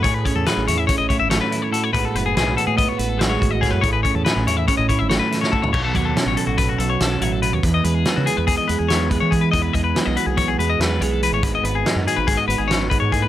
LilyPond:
<<
  \new Staff \with { instrumentName = "Clean electric guitar" } { \time 9/8 \key a \lydian \tempo 4. = 95 cis''16 b'16 cis''16 a'16 b'8 cis''16 e''16 cis''16 dis''16 cis''16 e''16 cis''16 b'8 cis''16 a'16 cis''16 | b'16 a'16 b'16 gis'16 gis'8 a'16 gis'16 dis''16 cis''16 b'16 a'16 b'16 cis''8 dis''16 gis'16 b'16 | cis''16 b'16 cis''16 a'16 b'8 cis''16 e''16 cis''16 dis''16 cis''16 e''16 cis''16 b'8 cis''16 a'16 cis''16 | cis''16 a'16 cis''16 a'8 cis''16 a'16 fis'16 b'16 fis'16 a'16 cis''16 a'8 cis''16 a'16 b'16 cis''16 |
b'16 dis''16 b'16 gis'8 fis'16 gis'16 b'16 gis'16 dis''16 b'16 gis'16 cis''8 b'16 cis''16 gis'16 b'16 | dis''16 b'16 dis''16 b'8 dis''16 b'16 gis'16 cis''16 gis'16 b'16 dis''16 b'8 cis''16 a'16 b'16 cis''16 | b'16 dis''16 b'16 gis'8 fis'16 gis'16 b'16 gis'16 dis''16 b'16 gis'16 cis''8 b'16 cis''16 gis'16 b'16 | }
  \new Staff \with { instrumentName = "Clean electric guitar" } { \time 9/8 \key a \lydian << { gis'8 cis'8 gis'8 e'8 cis'8 e'4 e'8 fis'8 | <gis b fis' b'>8 b8 b'8 fis'8 b8 fis'4 fis'8 cis''8 | gis'8 cis'8 gis'8 e'8 cis'8 e'4 e'8 fis'8 | r4 cis'8 a'4. cis'4. |
r4 b8 gis'4. b4. | r4 b8 fis'4. b4. | r4 dis'8 fis'2. | } \\ { a,2. a4 a,8 | a,2. gis4 a,8 | a,2. a4 a,8 | b,8 fis4. b,8 fis4 fis8 b,8 |
e,8 gis4. e,8 gis4 gis8 e,8 | e,8 gis4. e,8 gis4 gis8 e,8 | gis,8 b4. gis,8 b8 fis,8 gis,8 a,8 | } >> }
  \new Staff \with { instrumentName = "Fingered electric bass" } { \clef bass \time 9/8 \key a \lydian a,8 r16 e,16 r16 a,,16 e,8 r16 a,,16 a,16 gis,,8 r4 r16 | a,,16 r16 fis,,8 b,,8 r16 a,8 r16 a,,4 a,,8. fis,16 | a,,8 r16 e,16 r16 a,,16 e,8 r16 a,,16 a,16 gis,,8 r4 r16 | b,,8 dis,8 r16 a,,16 r16 a,,8. b,,8 b,,8 a,,8. dis,16 |
e,8 e,8 r16 cis16 r16 e,8 r16 e,16 e,4 e8. | e,8 e,8 r16 b,,16 r16 b,,8. e,8 e,8 b,,8. a,,16 | gis,,8 gis,,8 r16 fis,16 r16 gis,,8 r16 gis,,16 gis,,4 gis,8. | }
  \new DrumStaff \with { instrumentName = "Drums" } \drummode { \time 9/8 <hh bd>8 <hh bd>8 <hh sn>8 hh8 <hh bd>8 <hh bd>8 <hh sn>8 hh8 hh8 | <hh bd>8 hh8 <hh sn>8 hh8 <hh bd>8 hh8 <hh sn>8 <hh bd>8 <hh bd sn>8 | <hh bd>8 <hh bd>8 <hh sn>8 hh8 <hh bd>8 <hh bd>8 <hh sn>8 <hh sn>16 sn16 bd16 tomfh16 | <cymc bd>8 <hh bd>8 <hh sn>8 hh8 <hh bd>8 hh8 <hh sn>8 hh8 hh8 |
<hh bd>8 hh8 <hh sn>8 hh8 <hh bd>8 hh8 <hh sn>8 <hh bd>8 <hh bd>8 | <hh bd>8 <hh bd>8 <hh sn>8 hh8 <hh bd>8 hh8 <hh sn>8 hh8 hh8 | <hh bd>8 hh8 <hh sn>8 hh8 <hh bd>8 hh8 <hh sn>8 <hh bd>8 <hh bd>8 | }
>>